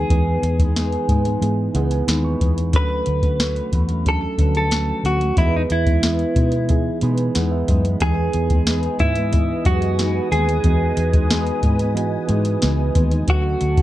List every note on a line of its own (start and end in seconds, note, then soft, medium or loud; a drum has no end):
0.00 0.09 E3 medium
0.00 0.09 B3 medium
0.00 0.10 D#4 medium
0.00 1.71 G#4 medium
0.00 0.11 B4 medium
0.09 0.36 E2 medium
0.09 1.00 E3 medium
0.09 0.59 E3 medium
0.09 0.59 G#3 medium
0.09 1.00 B3 medium
0.09 0.59 B3 medium
0.09 1.01 D#4 medium
0.09 0.57 D#4 medium
0.09 1.01 B4 medium
0.09 kick medium
0.09 closed hi-hat medium
0.42 0.95 E2 medium
0.42 closed hi-hat medium
0.59 0.75 G#3 soft
0.59 0.76 B3 soft
0.59 0.76 D#4 medium
0.59 kick medium
0.59 closed hi-hat soft
0.75 1.07 E3 medium
0.75 1.08 G#3 medium
0.75 1.09 B3 medium
0.75 1.10 D#4 medium
0.75 snare loud
0.75 closed hi-hat medium
0.92 closed hi-hat soft
1.09 1.35 G#2 medium
1.09 1.25 E3 medium
1.09 1.26 G#3 medium
1.09 1.25 B3 medium
1.09 1.24 D#4 medium
1.09 kick medium
1.09 closed hi-hat medium
1.25 1.73 G#3 medium
1.25 1.74 B3 medium
1.25 1.74 D#4 medium
1.25 closed hi-hat soft
1.41 1.68 G#2 medium
1.41 1.64 E3 medium
1.41 1.65 B3 medium
1.41 1.65 D#4 medium
1.41 1.65 G#4 medium
1.41 closed hi-hat medium
1.74 2.01 C#2 medium
1.74 2.07 E3 medium
1.74 2.06 G#3 medium
1.74 2.43 B3 medium
1.74 2.07 B3 medium
1.74 2.43 D#4 medium
1.74 2.07 D#4 medium
1.74 2.42 E4 medium
1.74 2.43 G#4 medium
1.74 1.90 F#5 medium
1.74 closed hi-hat medium
1.91 2.07 G#5 medium
1.91 closed hi-hat medium
2.07 2.34 D#2 medium
2.07 2.39 G#3 medium
2.07 2.40 B3 medium
2.07 2.41 D#4 medium
2.07 2.23 B5 medium
2.07 snare loud
2.07 closed hi-hat medium
2.25 2.70 C#6 medium
2.39 2.74 E2 medium
2.39 2.56 E3 medium
2.39 2.57 G#3 medium
2.39 2.56 B3 medium
2.39 2.55 D#4 medium
2.39 kick medium
2.39 closed hi-hat medium
2.56 2.73 G#3 soft
2.56 2.73 B3 soft
2.56 2.73 D#4 soft
2.56 closed hi-hat medium
2.72 3.00 D2 medium
2.72 3.22 D3 medium
2.72 3.64 F#3 medium
2.72 3.23 A3 medium
2.72 3.22 C#4 medium
2.72 3.65 C#4 medium
2.72 3.65 D4 medium
2.72 3.21 F#4 medium
2.72 4.08 B4 loud
2.72 kick loud
2.72 closed hi-hat medium
2.77 3.66 A4 medium
3.06 3.59 D2 medium
3.06 closed hi-hat medium
3.22 3.38 A3 soft
3.22 3.39 C#4 soft
3.22 3.39 F#4 medium
3.22 kick medium
3.22 closed hi-hat soft
3.39 3.70 D3 medium
3.39 3.72 A3 medium
3.39 3.72 C#4 medium
3.39 3.73 F#4 medium
3.39 snare loud
3.39 closed hi-hat medium
3.56 closed hi-hat soft
3.72 4.25 E2 medium
3.72 3.89 D3 medium
3.72 3.89 A3 medium
3.72 3.88 C#4 medium
3.72 3.87 F#4 medium
3.72 kick medium
3.72 closed hi-hat medium
3.88 4.37 A3 soft
3.88 4.38 C#4 medium
3.88 4.38 F#4 medium
3.88 closed hi-hat soft
4.05 4.28 F#3 medium
4.05 4.28 C#4 medium
4.05 4.29 D4 medium
4.05 4.29 A4 medium
4.05 4.56 A4 medium
4.05 kick medium
4.05 closed hi-hat medium
4.37 4.91 D2 loud
4.37 4.69 D3 medium
4.37 4.45 F3 medium
4.37 4.70 A3 medium
4.37 4.71 C#4 medium
4.37 5.07 C#4 medium
4.37 5.07 D4 medium
4.37 4.71 F#4 medium
4.37 5.07 B4 medium
4.37 kick medium
4.37 closed hi-hat medium
4.45 5.09 F#3 medium
4.55 5.05 A4 loud
4.55 closed hi-hat soft
4.70 5.02 D3 medium
4.70 5.03 A3 medium
4.70 5.04 C#4 medium
4.70 5.04 F#4 medium
4.70 snare medium
4.70 closed hi-hat medium
5.03 5.30 D2 medium
5.03 5.20 D3 medium
5.03 5.21 A3 medium
5.03 5.20 C#4 medium
5.03 5.19 F#4 medium
5.03 5.38 F#4 medium
5.03 closed hi-hat medium
5.21 5.37 A3 soft
5.21 5.37 C#4 soft
5.21 closed hi-hat soft
5.36 5.64 E2 medium
5.36 6.27 E3 medium
5.36 5.86 E3 medium
5.36 5.87 G#3 medium
5.36 6.28 B3 medium
5.36 5.86 B3 medium
5.36 5.85 D#4 medium
5.36 5.55 E4 medium
5.36 5.45 F#4 medium
5.36 6.28 D#5 medium
5.36 kick medium
5.36 closed hi-hat medium
5.45 6.32 G#4 medium
5.56 5.61 D#4 medium
5.70 6.23 E2 loud
5.70 6.99 E4 medium
5.70 closed hi-hat medium
5.86 6.02 G#3 soft
5.86 6.02 B3 soft
5.86 6.03 D#4 soft
5.86 kick medium
5.86 closed hi-hat soft
6.03 6.34 E3 medium
6.03 6.35 G#3 medium
6.03 6.36 B3 medium
6.03 snare loud
6.03 closed hi-hat medium
6.19 closed hi-hat soft
6.36 6.89 B2 medium
6.36 6.52 E3 medium
6.36 6.53 G#3 medium
6.36 6.53 B3 medium
6.36 6.54 D#4 medium
6.36 kick medium
6.36 closed hi-hat medium
6.52 7.02 G#3 soft
6.52 7.03 B3 medium
6.52 closed hi-hat soft
6.68 6.91 E3 medium
6.68 6.91 B3 medium
6.68 6.92 D#4 medium
6.68 6.92 G#4 medium
6.68 kick medium
6.68 closed hi-hat medium
7.01 7.29 B2 medium
7.01 7.70 E3 medium
7.01 7.33 E3 medium
7.01 7.34 G#3 medium
7.01 7.70 B3 medium
7.01 7.35 B3 medium
7.01 7.70 D#4 medium
7.01 7.35 D#4 medium
7.01 7.71 G#4 medium
7.01 7.18 B5 medium
7.01 closed hi-hat medium
7.18 7.34 G#5 medium
7.18 closed hi-hat medium
7.35 7.62 E2 medium
7.35 7.67 E3 medium
7.35 7.68 G#3 medium
7.35 7.68 B3 medium
7.35 7.69 D#4 medium
7.35 7.50 F#5 medium
7.35 snare loud
7.35 closed hi-hat medium
7.51 7.67 E5 medium
7.68 7.95 F#2 medium
7.68 7.84 E3 medium
7.68 7.85 G#3 medium
7.68 7.85 B3 medium
7.68 7.83 D#4 medium
7.68 7.99 D#5 medium
7.68 kick medium
7.68 closed hi-hat medium
7.85 8.00 G#3 soft
7.85 8.01 B3 soft
7.85 8.01 D#4 medium
7.85 closed hi-hat soft
8.00 8.27 E2 medium
8.00 8.91 E3 medium
8.00 8.50 E3 medium
8.00 8.51 G#3 medium
8.00 8.92 B3 medium
8.00 8.51 B3 medium
8.00 8.92 D#4 medium
8.00 8.49 D#4 medium
8.00 8.96 G#4 loud
8.00 13.24 B4 medium
8.00 13.24 D#5 medium
8.00 13.24 G#5 medium
8.00 13.24 D#6 medium
8.00 kick medium
8.00 closed hi-hat medium
8.33 8.87 E2 loud
8.33 closed hi-hat medium
8.50 8.66 G#3 soft
8.50 8.67 B3 soft
8.50 8.67 D#4 medium
8.50 kick medium
8.50 closed hi-hat soft
8.67 8.99 E3 medium
8.67 9.00 G#3 medium
8.67 9.01 B3 medium
8.67 9.01 D#4 medium
8.67 snare loud
8.67 closed hi-hat medium
8.83 closed hi-hat soft
8.99 9.52 G#2 medium
8.99 9.16 E3 medium
8.99 9.17 B3 medium
8.99 9.18 D#4 medium
8.99 9.68 E4 medium
8.99 kick medium
8.99 closed hi-hat medium
9.15 9.65 G#3 soft
9.15 9.66 B3 soft
9.15 closed hi-hat soft
9.31 9.55 E3 medium
9.31 9.55 B3 medium
9.31 9.56 D#4 medium
9.31 9.56 B4 medium
9.31 kick medium
9.31 closed hi-hat medium
9.65 10.18 F#2 loud
9.65 10.33 E3 medium
9.65 9.98 E3 medium
9.65 9.98 G#3 medium
9.65 9.99 B3 medium
9.65 10.34 D#4 medium
9.65 10.00 D#4 medium
9.65 10.28 F#4 medium
9.65 9.73 G4 medium
9.65 kick medium
9.65 closed hi-hat medium
9.74 10.38 G#4 medium
9.82 closed hi-hat soft
9.99 10.30 E3 medium
9.99 10.31 G#3 medium
9.99 10.31 B3 medium
9.99 10.32 D#4 medium
9.99 snare loud
9.99 closed hi-hat loud
10.31 10.58 D#2 medium
10.31 10.48 E3 medium
10.31 10.48 G#3 medium
10.31 10.48 B3 medium
10.31 10.47 D#4 medium
10.31 12.25 G#4 medium
10.31 closed hi-hat medium
10.48 10.64 G#3 soft
10.48 10.65 B3 soft
10.48 10.64 D#4 medium
10.48 closed hi-hat medium
10.63 10.91 E2 medium
10.63 11.54 E3 medium
10.63 11.14 E3 medium
10.63 11.14 G#3 medium
10.63 11.55 B3 medium
10.63 11.14 B3 medium
10.63 11.55 D#4 medium
10.63 11.12 D#4 medium
10.63 11.56 F#4 medium
10.63 kick medium
10.63 closed hi-hat medium
10.97 11.50 E2 medium
10.97 closed hi-hat medium
11.13 11.29 G#3 soft
11.13 11.30 B3 soft
11.13 11.30 D#4 medium
11.13 kick medium
11.13 closed hi-hat soft
11.30 11.62 E3 medium
11.30 11.63 G#3 medium
11.30 11.64 B3 loud
11.30 11.64 D#4 loud
11.30 snare loud
11.30 closed hi-hat medium
11.47 closed hi-hat soft
11.63 12.16 G#2 medium
11.63 11.80 E3 medium
11.63 11.80 G#3 medium
11.63 11.80 B3 medium
11.63 11.78 D#4 medium
11.63 kick medium
11.63 closed hi-hat medium
11.79 12.28 G#3 medium
11.79 12.29 B3 medium
11.79 12.29 D#4 medium
11.79 closed hi-hat soft
11.95 12.18 E3 medium
11.95 12.18 B3 medium
11.95 12.19 D#4 medium
11.95 12.19 F#4 medium
11.95 closed hi-hat medium
12.27 12.56 G#2 medium
12.27 12.96 E3 medium
12.27 12.60 E3 medium
12.27 12.61 G#3 medium
12.27 12.96 B3 medium
12.27 12.61 B3 medium
12.27 12.97 D#4 medium
12.27 12.62 D#4 medium
12.27 12.97 G#4 medium
12.27 closed hi-hat medium
12.45 closed hi-hat medium
12.61 12.89 C#2 medium
12.61 12.94 E3 medium
12.61 12.95 G#3 medium
12.61 12.95 B3 medium
12.61 12.96 D#4 medium
12.61 snare loud
12.61 closed hi-hat medium
12.95 13.21 D#2 medium
12.95 13.11 E3 medium
12.95 13.12 G#3 medium
12.95 13.11 B3 medium
12.95 13.10 D#4 medium
12.95 kick medium
12.95 closed hi-hat medium
13.11 13.28 G#3 soft
13.11 13.28 B3 soft
13.11 13.28 D#4 medium
13.11 closed hi-hat soft
13.27 13.54 D2 loud
13.27 13.77 D3 medium
13.27 13.82 F#3 medium
13.27 13.78 F#3 medium
13.27 13.78 A3 medium
13.27 13.82 C#4 medium
13.27 13.77 C#4 medium
13.27 13.82 D4 medium
13.27 13.82 F#4 loud
13.27 13.82 A4 medium
13.27 13.82 F#5 medium
13.27 13.82 A5 medium
13.27 kick loud
13.27 closed hi-hat medium
13.61 13.82 D2 loud
13.61 closed hi-hat medium
13.77 13.82 A3 medium
13.77 13.82 C#4 medium
13.77 kick medium
13.77 closed hi-hat soft